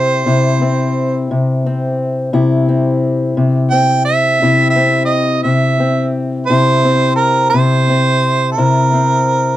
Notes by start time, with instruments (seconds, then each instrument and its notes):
Already playing: steel-string acoustic guitar C3 C4 E4, harmonica C5
0.26 steel-string acoustic guitar C3 E4
0.62 steel-string acoustic guitar C4
1.31 steel-string acoustic guitar C3
1.66 steel-string acoustic guitar C4
2.33 steel-string acoustic guitar C3 E4
2.69 steel-string acoustic guitar C4
3.37 steel-string acoustic guitar C3
3.70 steel-string acoustic guitar C4, harmonica G5
4.05 harmonica E5
4.42 steel-string acoustic guitar C3 E4
4.70 harmonica E5
4.76 steel-string acoustic guitar C4
5.05 harmonica D#5
5.43 steel-string acoustic guitar C3, harmonica E5
5.80 steel-string acoustic guitar C4
6.46 steel-string acoustic guitar C3, harmonica C5
6.51 steel-string acoustic guitar E4
6.84 steel-string acoustic guitar C4
7.16 harmonica A#4
7.50 harmonica C5
7.54 steel-string acoustic guitar C3
7.89 steel-string acoustic guitar C4
8.52 harmonica A#4
8.58 steel-string acoustic guitar C3 E4
8.93 steel-string acoustic guitar C4